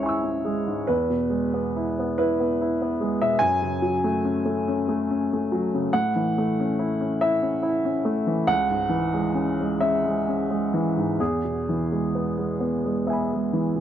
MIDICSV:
0, 0, Header, 1, 2, 480
1, 0, Start_track
1, 0, Tempo, 849858
1, 503, Time_signature, 6, 3, 24, 8
1, 985, Tempo, 828729
1, 2425, Tempo, 853485
1, 4825, Tempo, 887574
1, 5785, Tempo, 930233
1, 7607, End_track
2, 0, Start_track
2, 0, Title_t, "Upright piano"
2, 0, Program_c, 0, 0
2, 0, Control_c, 0, 64, 127
2, 0, Note_on_c, 0, 37, 41
2, 0, Note_on_c, 0, 44, 32
2, 0, Note_on_c, 0, 56, 34
2, 0, Note_on_c, 0, 61, 33
2, 0, Note_on_c, 0, 64, 34
2, 0, Note_on_c, 0, 73, 61
2, 0, Note_on_c, 0, 76, 61
2, 13, Note_off_c, 0, 64, 0
2, 13, Note_on_c, 0, 64, 38
2, 16, Note_on_c, 0, 80, 29
2, 33, Note_on_c, 0, 85, 29
2, 49, Note_on_c, 0, 88, 29
2, 98, Note_off_c, 0, 61, 0
2, 131, Note_on_c, 0, 61, 31
2, 209, Note_off_c, 0, 64, 0
2, 253, Note_off_c, 0, 56, 0
2, 253, Note_on_c, 0, 56, 38
2, 328, Note_off_c, 0, 61, 0
2, 377, Note_off_c, 0, 44, 0
2, 377, Note_on_c, 0, 44, 33
2, 449, Note_off_c, 0, 56, 0
2, 476, Note_off_c, 0, 80, 0
2, 484, Note_off_c, 0, 85, 0
2, 485, Note_off_c, 0, 37, 0
2, 492, Note_off_c, 0, 88, 0
2, 493, Note_on_c, 0, 71, 58
2, 500, Note_off_c, 0, 44, 0
2, 501, Note_on_c, 0, 40, 43
2, 504, Note_off_c, 0, 73, 0
2, 513, Control_c, 0, 64, 0
2, 517, Note_off_c, 0, 76, 0
2, 612, Control_c, 0, 64, 127
2, 621, Note_on_c, 0, 47, 33
2, 733, Note_on_c, 0, 56, 35
2, 816, Note_off_c, 0, 47, 0
2, 868, Note_on_c, 0, 59, 35
2, 931, Note_off_c, 0, 56, 0
2, 996, Note_on_c, 0, 64, 35
2, 1059, Note_off_c, 0, 59, 0
2, 1130, Note_on_c, 0, 59, 38
2, 1184, Note_off_c, 0, 64, 0
2, 1222, Note_off_c, 0, 71, 0
2, 1238, Note_on_c, 0, 71, 63
2, 1241, Note_on_c, 0, 64, 42
2, 1310, Note_off_c, 0, 59, 0
2, 1367, Note_on_c, 0, 59, 36
2, 1425, Note_off_c, 0, 64, 0
2, 1489, Note_on_c, 0, 64, 42
2, 1547, Note_off_c, 0, 59, 0
2, 1607, Note_on_c, 0, 59, 36
2, 1667, Note_off_c, 0, 64, 0
2, 1716, Note_on_c, 0, 56, 39
2, 1785, Note_off_c, 0, 59, 0
2, 1827, Note_off_c, 0, 71, 0
2, 1837, Note_on_c, 0, 76, 66
2, 1838, Note_on_c, 0, 47, 39
2, 1899, Note_off_c, 0, 56, 0
2, 1916, Note_off_c, 0, 40, 0
2, 1938, Note_on_c, 0, 80, 85
2, 1948, Note_off_c, 0, 47, 0
2, 1948, Note_off_c, 0, 76, 0
2, 1948, Control_c, 0, 64, 0
2, 1950, Note_on_c, 0, 42, 49
2, 2052, Control_c, 0, 64, 127
2, 2072, Note_on_c, 0, 49, 36
2, 2188, Note_on_c, 0, 54, 42
2, 2259, Note_off_c, 0, 49, 0
2, 2315, Note_on_c, 0, 57, 39
2, 2379, Note_off_c, 0, 54, 0
2, 2435, Note_on_c, 0, 61, 38
2, 2502, Note_off_c, 0, 57, 0
2, 2552, Note_on_c, 0, 57, 39
2, 2620, Note_off_c, 0, 61, 0
2, 2678, Note_on_c, 0, 61, 44
2, 2738, Note_off_c, 0, 57, 0
2, 2794, Note_on_c, 0, 57, 42
2, 2861, Note_off_c, 0, 61, 0
2, 2917, Note_on_c, 0, 61, 40
2, 2980, Note_off_c, 0, 57, 0
2, 3045, Note_on_c, 0, 57, 38
2, 3102, Note_off_c, 0, 61, 0
2, 3151, Note_on_c, 0, 54, 43
2, 3226, Note_off_c, 0, 57, 0
2, 3276, Note_on_c, 0, 49, 40
2, 3339, Note_off_c, 0, 54, 0
2, 3365, Note_off_c, 0, 42, 0
2, 3381, Note_off_c, 0, 80, 0
2, 3381, Note_on_c, 0, 78, 71
2, 3386, Note_on_c, 0, 45, 54
2, 3389, Note_off_c, 0, 49, 0
2, 3392, Control_c, 0, 64, 0
2, 3477, Control_c, 0, 64, 127
2, 3509, Note_on_c, 0, 52, 40
2, 3634, Note_on_c, 0, 57, 41
2, 3696, Note_off_c, 0, 52, 0
2, 3758, Note_on_c, 0, 61, 42
2, 3819, Note_off_c, 0, 57, 0
2, 3865, Note_on_c, 0, 64, 42
2, 3941, Note_off_c, 0, 61, 0
2, 3987, Note_on_c, 0, 61, 42
2, 4056, Note_off_c, 0, 64, 0
2, 4101, Note_off_c, 0, 78, 0
2, 4102, Note_on_c, 0, 76, 70
2, 4106, Note_on_c, 0, 64, 46
2, 4178, Note_off_c, 0, 61, 0
2, 4220, Note_on_c, 0, 61, 42
2, 4298, Note_off_c, 0, 64, 0
2, 4334, Note_on_c, 0, 64, 47
2, 4345, Note_off_c, 0, 76, 0
2, 4415, Note_off_c, 0, 61, 0
2, 4462, Note_on_c, 0, 61, 41
2, 4532, Note_off_c, 0, 64, 0
2, 4573, Note_on_c, 0, 57, 45
2, 4655, Note_off_c, 0, 61, 0
2, 4697, Note_on_c, 0, 52, 39
2, 4771, Note_off_c, 0, 57, 0
2, 4804, Note_off_c, 0, 45, 0
2, 4812, Note_on_c, 0, 78, 86
2, 4813, Note_on_c, 0, 37, 53
2, 4821, Note_off_c, 0, 52, 0
2, 4833, Control_c, 0, 64, 0
2, 4908, Control_c, 0, 64, 127
2, 4934, Note_on_c, 0, 44, 40
2, 5039, Note_on_c, 0, 52, 41
2, 5128, Note_off_c, 0, 44, 0
2, 5172, Note_on_c, 0, 56, 38
2, 5242, Note_off_c, 0, 52, 0
2, 5283, Note_on_c, 0, 61, 38
2, 5370, Note_off_c, 0, 56, 0
2, 5426, Note_on_c, 0, 56, 38
2, 5486, Note_off_c, 0, 61, 0
2, 5532, Note_on_c, 0, 76, 65
2, 5537, Note_off_c, 0, 78, 0
2, 5539, Note_on_c, 0, 61, 42
2, 5617, Note_off_c, 0, 56, 0
2, 5666, Note_on_c, 0, 56, 39
2, 5734, Note_off_c, 0, 61, 0
2, 5790, Note_on_c, 0, 61, 39
2, 5854, Note_off_c, 0, 56, 0
2, 5905, Note_on_c, 0, 56, 36
2, 5973, Note_off_c, 0, 61, 0
2, 6025, Note_on_c, 0, 52, 39
2, 6092, Note_off_c, 0, 56, 0
2, 6146, Note_on_c, 0, 44, 35
2, 6215, Note_off_c, 0, 52, 0
2, 6236, Note_off_c, 0, 37, 0
2, 6256, Note_off_c, 0, 76, 0
2, 6264, Note_on_c, 0, 40, 45
2, 6265, Note_off_c, 0, 44, 0
2, 6265, Note_on_c, 0, 68, 56
2, 6272, Control_c, 0, 64, 0
2, 6363, Control_c, 0, 64, 127
2, 6390, Note_on_c, 0, 47, 32
2, 6516, Note_on_c, 0, 52, 34
2, 6586, Note_off_c, 0, 47, 0
2, 6635, Note_on_c, 0, 56, 33
2, 6709, Note_off_c, 0, 52, 0
2, 6754, Note_on_c, 0, 59, 33
2, 6827, Note_off_c, 0, 56, 0
2, 6874, Note_on_c, 0, 56, 35
2, 6945, Note_off_c, 0, 59, 0
2, 6987, Note_on_c, 0, 59, 37
2, 6993, Note_off_c, 0, 68, 0
2, 7062, Note_off_c, 0, 56, 0
2, 7114, Note_on_c, 0, 56, 33
2, 7177, Note_off_c, 0, 59, 0
2, 7226, Note_on_c, 0, 59, 36
2, 7228, Note_on_c, 0, 76, 29
2, 7243, Note_on_c, 0, 80, 28
2, 7259, Note_on_c, 0, 83, 29
2, 7300, Note_off_c, 0, 56, 0
2, 7361, Note_on_c, 0, 56, 32
2, 7417, Note_off_c, 0, 59, 0
2, 7467, Note_on_c, 0, 52, 35
2, 7545, Note_off_c, 0, 56, 0
2, 7582, Note_on_c, 0, 47, 32
2, 7607, Note_off_c, 0, 40, 0
2, 7607, Note_off_c, 0, 47, 0
2, 7607, Note_off_c, 0, 52, 0
2, 7607, Note_off_c, 0, 76, 0
2, 7607, Note_off_c, 0, 80, 0
2, 7607, Note_off_c, 0, 83, 0
2, 7607, End_track
0, 0, End_of_file